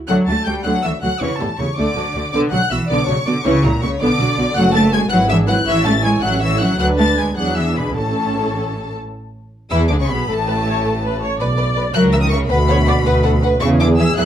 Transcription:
0.08 D2 D3 F#3 A3 F#5 F#6
0.27 D2 F#3 A3 D4 A5 A6
0.45 D2 G3 A3 F#4 G5 G6
0.64 D2 D3 F#3 A3 F#5 F#6
0.83 D2 E3 F#3 D4 E5 E6
1.02 D2 F#3 A3 F#4 F#5 F#6
1.20 E2 C#3 E3 C#4 C#5 C#6
1.39 E2 A2 G3 E4 A4 A5
1.58 E2 C#3 A3 G4 C#5 C#6
1.76 D2 D3 A3 D5 D6
1.96 D2 F#3 D4
2.15 D2 A3 F#4
2.32 B1 D3 B3 D5 D6
2.51 B1 F#3 D4 F#5 F#6
2.70 B1 E3 B3 F#4 E5 E6
2.88 B1 D3 B3 D5 D6
3.06 B1 C#3 F#3 D4 C#5 C#6
3.26 B1 D3 B3 F#4 D5 D6
3.44 C#2 C#3 E3 C#4 C#5 C#6
3.63 C#2 A#2 F#3 E4 A#4 A#5
3.81 C#2 C#3 A#3 F#4 C#5 C#6
4.00 B1 D3 B3 D5 D6
4.19 B1 F#3 D4
4.37 B1 B3 F#4
4.56 F#1 F#3 A3 F#4 F#5 F#6
4.73 A3 D4 A4 A5 A6
4.92 G#3 A3 F#4 G#5 G#6
5.10 G#1 F#3 E4 B4 F#5 F#6
5.28 E3 D4 G#4 E5 E6
5.47 F#3 E4 B4 F#5 F#6
5.66 A1 E3 E4 C#5 E5 E6
5.85 A3 C#4 E5 A5 A6
6.03 G#3 E4 C#5 G#5 G#6
6.21 A1 F#3 C#4 E5 F#5 F#6
6.41 E3 E4 C#5 E5 E6
6.59 F#3 C#4 E5 F#5 F#6
6.78 D2 F#3 D4 B4 F#5 F#6
6.98 A3 A5 A6
7.17 G#3 G#5 G#6
7.36 E2 F#3 D4 G#4 F#5 F#6
7.56 E3 E5 E6
7.76 B2 B4 B5
7.95 A1 A2 C#4 A4 A5
9.70 E2 E3 E4 G#4 E6
9.88 D2 D3 D4 D6
9.99 C#2 C#3 C#4 C#6
10.08 B1 B2 B3 B5
10.28 A1 A2 A3 A4 A5
10.47 B4
10.67 C#5
10.84 A4
11.03 B4
11.22 C#5
11.40 B1 B4 D5
11.57 B4 D5
11.76 B4 D5
11.94 C#2 F#3 A#4 E5 F#6
12.13 E3 A#4 E5 E6
12.22 D#3 D#6
12.30 C#3 A#4 E5 C#6
12.49 D2 B2 B4 F#5 B5
12.68 B4 C#5 F#5
12.86 B4 D5 F#5
13.05 D2 B4 F#5
13.23 A4 B4 F#5
13.43 B4 F#5
13.60 E2 C#3 G#4 E5 C#6
13.80 D3 G#4 E5 D6
13.99 E3 G#4 E5 E6
14.17 E2 F#3 G#4 E5 F#6

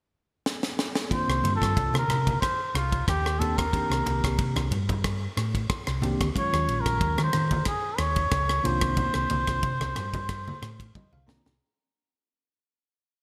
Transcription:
0.46 snare
0.63 snare
0.79 snare
0.95 snare
1.10 D#3 A#3 C4 D4 F4 C5, muted fingered electric bass stroke, kick, ride
1.28 C2, cross-stick
1.43 G2, ride, high conga
1.56 A4
1.62 G2, kick, cross-stick, ride
1.77 C2, kick, ride
1.93 C3, cross-stick, high conga
1.98 A#4
2.08 C3, cross-stick, ride, low conga
2.27 kick, ride, high conga
2.40 C5, kick, cross-stick, ride
2.74 C2 F4, cross-stick, ride
2.92 kick, ride
3.08 D#2 G4, kick, cross-stick, ride
3.26 cross-stick
3.39 D#3 A#3 C4 D4 G4 A4, ride, low conga
3.57 A#4, kick, cross-stick, ride
3.73 D#3 A#3 C4 D4 G4, kick, ride
3.90 C2, cross-stick
4.06 C2, ride, high conga
4.24 C2, kick, cross-stick, ride
4.38 C3, kick, ride
4.56 C2, cross-stick, high conga
4.71 G2, ride, low conga
4.89 kick, ride, high conga
5.04 kick, cross-stick, ride
5.37 A2, cross-stick, ride
5.55 kick, ride
5.70 kick, cross-stick, ride
5.87 C2, cross-stick
6.02 D#3 A#3 C4 D4 G4, ride, low conga
6.20 D2, kick, cross-stick, ride
6.34 D#3 F#3 G#3 C#4 F4 C#5, kick, ride
6.53 D#2, cross-stick
6.68 A#1, ride
6.81 A#4
6.86 A#1, kick, cross-stick, ride
7.01 D#2, kick, ride
7.18 D#3, cross-stick, high conga
7.23 C5
7.33 D#3, cross-stick, ride, low conga
7.51 kick, ride, high conga
7.65 G#4, kick, cross-stick, ride
7.98 D#2 C#5, cross-stick, ride
8.16 kick, ride
8.31 C#2, kick, cross-stick, ride
8.49 cross-stick
8.63 C2 D#3 A#3 C4 D4 F4 C5, ride, low conga
8.81 kick, cross-stick, ride
8.97 kick, ride, low conga
9.14 C2, cross-stick
9.30 C2, ride, high conga, low conga
9.47 C2, kick, cross-stick, ride
9.63 C3, kick, ride
9.80 C2, cross-stick, high conga
9.95 G2, cross-stick, ride, low conga
10.13 kick, ride, high conga
10.29 kick, cross-stick, ride
10.48 high conga
10.62 A2, cross-stick, ride
10.80 kick, ride
10.95 D#5, kick, high tom, high conga
11.13 C2 F5, high conga
11.27 D#3 A#3 C4 D4 F4 A#5, snare, low conga
11.46 C2, snare, low conga

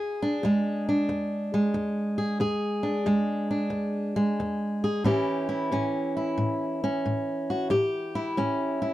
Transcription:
Already playing: E2 E4 G#4
0.22 D4
0.43 E2 G#3
0.89 D4
1.09 E2
1.54 G#3
1.74 E2
2.18 G#4
2.40 E2 G#4
2.83 D4
3.06 E2 G#3
3.51 D4
3.70 E2
4.16 G#3
4.40 E2
4.84 G#4
5.04 A2 E3 C#4 E4 G4
5.49 E4
5.72 A2 C#4
6.17 E4
6.38 A2
6.84 C#4
7.06 A2
7.50 F#4
7.70 A2 G4
8.15 E4
8.37 A2 C#4
8.82 E4

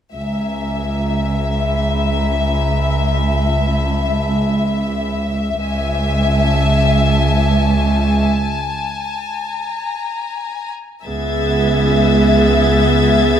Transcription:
0.14 C#2 E5 G#5 A#5
1.52 B5
3.45 A5
5.61 C#2 E5 G#5
6.31 A5
9.60 A#5
11.04 C#2 B3 G#4 E5 G#6 A6

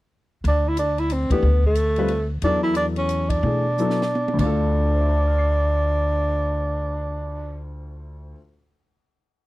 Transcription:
0.44 D2 D4, ride
0.68 E4
0.77 D4, hi-hat pedal, ride
0.98 E4, ride
1.10 C4, hi-hat pedal, ride
1.30 D#2 E3 A3 B3 D4 G4, kick, ride
1.42 D2
1.63 A3, kick
1.75 hi-hat pedal, ride
1.96 G3 C4 F4 B4, ride
2.08 ride
2.42 E2 F#3 B3 D4 E4 A4, ride
2.63 E4
2.75 D4, hi-hat pedal, ride
2.96 C#4, ride
3.09 hi-hat pedal, ride
3.29 D4, kick, ride
3.43 B2 E3 A3 D4 G#4
3.78 F#3 B3 E4 A4, hi-hat pedal
3.90 snare
4.02 snare
4.15 high tom
4.28 high tom
4.33 D2 D3
4.38 D2 A3 D4, kick, crash
4.43 F4 A4
4.93 C5
5.00 E5
5.09 A5
5.17 D6
5.28 F6
5.38 C7

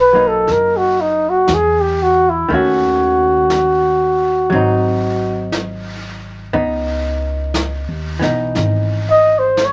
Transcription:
Already playing: B1 F#3 A#3 D#4
0.00 B4
0.13 F#3 A#3 D#4
0.28 A4
0.47 F#1, brush sweep, snare
0.52 A#4
0.77 F#4
1.01 D#4
1.29 F#4
1.47 E2, brush sweep, snare, hi-hat pedal
1.54 G#4
1.81 G4
2.03 F#4
2.30 E4
2.49 D#2 D#3 A3 C#4, brush sweep
2.54 F#4
3.50 brush sweep, snare, hi-hat pedal
4.50 G#1 F#3 C4, brush sweep
4.55 D#4
5.52 brush sweep, snare, hi-hat pedal
6.53 C#2 B3 D#4, brush sweep
7.54 brush sweep, snare, hi-hat pedal
7.89 D#2
8.20 B1 E3 B3 D#4, snare
8.55 G#1, brush sweep, snare
9.10 D#5
9.39 C5
9.57 brush sweep, snare, hi-hat pedal
9.65 C#5

